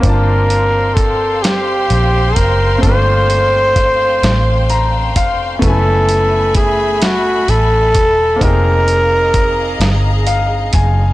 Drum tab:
HH |xxxxxx|xxxxxx|xxxxxx|xxxxxx|
SD |---o--|---o--|---o--|---o--|
BD |o-o--o|o-o--o|o-o--o|o-o--o|